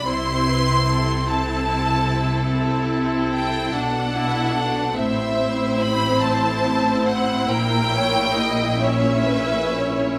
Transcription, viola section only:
0.06 2.46 C4 soft
0.06 1.25 E4 soft
1.26 2.47 E4 medium
2.49 3.71 C4 medium
2.49 3.71 E4 medium
3.74 4.55 D4 medium
4.14 4.56 E4 medium
4.56 4.97 D4 medium
4.97 7.46 C4 soft
4.97 10.19 E4 medium
7.51 8.81 A#3 medium
8.79 10.19 C#4 medium

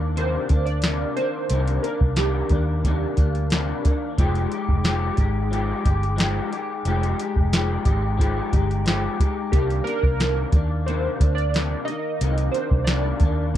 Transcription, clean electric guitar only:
0.00 0.16 D#3 soft
0.00 0.17 A#3 soft
0.00 0.17 D4 medium
0.16 0.50 C3 medium
0.16 0.50 D#3 medium
0.16 0.50 A#3 medium
0.16 0.49 D4 medium
0.50 0.85 A#3 soft
0.50 0.84 D4 soft
0.84 1.18 C3 medium
0.84 1.17 A#3 medium
0.84 1.16 D4 medium
1.17 1.50 D#3 soft
1.17 1.51 A#3 soft
1.17 1.51 D4 soft
1.51 1.84 C3 medium
1.51 1.85 D#3 medium
1.51 1.84 A#3 medium
1.51 1.83 D4 medium
1.84 2.17 D#3 soft
1.84 2.17 A#3 soft
1.84 2.17 D4 soft
2.18 2.51 C3 medium
2.18 2.51 D#3 medium
2.18 2.51 A#3 medium
2.18 2.50 D4 medium
2.51 2.84 D#3 soft
2.51 2.85 A#3 soft
2.51 2.85 D4 medium
2.85 3.18 C3 soft
2.85 3.18 D#3 medium
2.85 3.19 A#3 medium
2.85 3.16 D4 medium
3.18 3.52 A#3 soft
3.18 3.51 D4 soft
3.51 3.85 C3 medium
3.51 3.84 A#3 medium
3.51 3.83 D4 loud
3.84 4.17 D#3 soft
3.84 4.18 A#3 soft
3.84 4.18 D4 medium
4.18 4.51 F3 medium
4.18 4.52 G#3 medium
4.18 4.52 D#4 medium
4.18 4.51 G4 medium
4.52 4.84 G#3 soft
4.52 4.84 D#4 soft
4.52 4.85 G4 medium
4.84 5.18 F3 medium
4.84 5.18 G#3 medium
4.84 5.18 D#4 medium
4.84 5.18 G4 medium
5.19 5.51 G#3 soft
5.19 5.52 D#4 medium
5.19 5.52 G4 medium
5.51 5.85 F3 medium
5.51 5.85 G#3 medium
5.51 5.84 D#4 medium
5.51 5.83 G4 medium
5.84 6.16 G#3 soft
5.84 6.17 D#4 soft
5.84 6.18 G4 soft
6.16 6.51 F3 medium
6.16 6.52 G#3 medium
6.16 6.50 D#4 medium
6.16 6.50 G4 medium
6.51 6.85 G#3 soft
6.51 6.85 D#4 soft
6.51 6.85 G4 soft
6.86 7.19 F3 medium
6.86 7.20 G#3 medium
6.86 7.20 D#4 medium
6.86 7.19 G4 medium
7.20 7.53 G#3 soft
7.20 7.53 D#4 soft
7.20 7.53 G4 soft
7.53 7.86 F3 medium
7.53 7.87 G#3 medium
7.53 7.86 D#4 medium
7.53 7.84 G4 medium
7.85 8.18 G#3 medium
7.85 8.18 D#4 medium
7.85 8.19 G4 medium
8.18 8.52 F3 medium
8.18 8.53 G#3 medium
8.18 8.53 D#4 medium
8.18 8.52 G4 medium
8.54 8.86 G#3 soft
8.54 8.86 D#4 soft
8.54 8.87 G4 medium
8.86 9.20 F3 medium
8.86 9.20 G#3 medium
8.86 9.20 D#4 medium
8.86 9.19 G4 medium
9.20 9.53 G#3 soft
9.20 9.54 D#4 soft
9.20 9.53 G4 soft
9.53 9.87 C3 medium
9.53 9.87 D#3 medium
9.53 9.86 A#3 medium
9.53 9.86 D4 medium
9.87 10.19 D#3 soft
9.87 10.20 A#3 soft
9.87 10.20 D4 soft
10.20 10.53 C3 medium
10.20 10.54 D#3 medium
10.20 10.54 A#3 medium
10.20 10.52 D4 medium
10.53 10.87 D#3 soft
10.53 10.87 A#3 soft
10.53 10.87 D4 medium
10.87 11.20 C3 medium
10.87 11.21 D#3 medium
10.87 11.21 A#3 medium
10.87 11.19 D4 medium
11.20 11.54 A#3 soft
11.20 11.54 D4 soft
11.53 11.87 C3 medium
11.53 11.87 A#3 medium
11.53 11.89 D4 medium
11.89 12.21 D#3 soft
11.89 12.22 A#3 soft
12.21 12.55 C3 medium
12.21 12.55 D#3 medium
12.21 12.55 A#3 medium
12.55 12.88 D#3 soft
12.55 12.89 A#3 soft
12.55 12.88 D4 soft
12.89 13.22 C3 medium
12.89 13.22 D#3 medium
12.89 13.22 A#3 medium
12.89 13.21 D4 medium
13.22 13.54 D#3 soft
13.22 13.55 A#3 medium
13.22 13.55 D4 medium
13.54 13.57 C3 medium

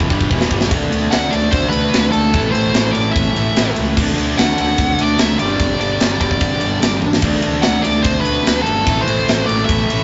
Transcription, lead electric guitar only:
1.11 1.33 F#5 loud
1.31 1.53 D5 medium
1.51 1.69 C5 loud
1.69 2.11 B4 medium
2.12 2.51 A4 medium
2.52 2.95 C5 loud
2.91 3.12 D5 medium
3.13 3.71 E5 medium
4.38 4.59 F#5 loud
4.61 5.02 F#5 loud
5.01 5.20 D5 medium
5.20 5.39 E5 loud
5.40 5.79 D5 medium
5.81 6.20 D5 medium
6.21 6.99 D5 medium
7.62 7.82 F#5 loud
7.82 8.05 D5 medium
8.02 8.20 C5 loud
8.21 8.61 B4 loud
8.62 9.02 A4 medium
9.02 9.47 C5 medium
9.46 9.65 D5 medium
9.65 10.04 E5 medium

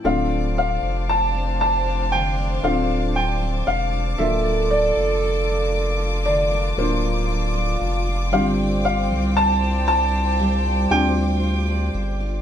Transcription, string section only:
0.04 4.15 C5 medium
0.04 4.14 F5 medium
0.04 8.28 A5 medium
0.04 12.42 D6 medium
4.19 8.28 A#3 medium
4.19 12.42 F4 medium
8.33 12.42 C5 medium
8.33 12.42 G5 medium

